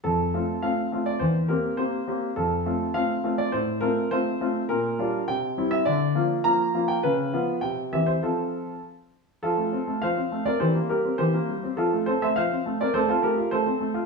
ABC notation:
X:1
M:2/4
L:1/16
Q:1/4=103
K:F
V:1 name="Grand piano"
A4 f3 d | c2 B2 c4 | A4 f3 d | c2 B2 c4 |
B4 g3 e | d4 b3 g | _c4 g2 e =c | A4 z4 |
[FA]4 [cf]3 [Bd] | [Gc]2 [GB]2 [Gc]4 | [FA]2 [Ac] [ce] [cf]3 [Bd] | [Ac] [FA] [GB]2 [Ac]4 |]
V:2 name="Grand piano"
F,,2 [A,CF]2 [A,CF]2 [A,CF]2 | E,,2 [B,CG]2 [B,CG]2 [B,CG]2 | F,,2 [A,CF]2 [A,CF]2 [A,CF]2 | A,,2 [A,CF]2 [A,CF]2 [A,CF]2 |
B,,2 [G,DF]2 C,2 [G,CE]2 | D,2 [F,B,F]2 [F,B,F]2 [F,B,F]2 | _D,2 [F,_CF]2 =C,2 [E,=CG]2 | [F,CF]4 z4 |
F, A, C A, F, C A, C | E, B, G, C E, B, G, C | F, A, C A, F, C A, C | A, C A, F A, C A, F |]